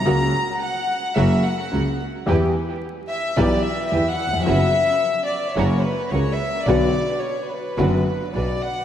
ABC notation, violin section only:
X:1
M:4/4
L:1/8
Q:1/4=109
K:F#phr
V:1 name="Violin section"
^a2 f2 e f2 z | z3 e d e e f | e3 d c B c e | d2 c B3 d f |]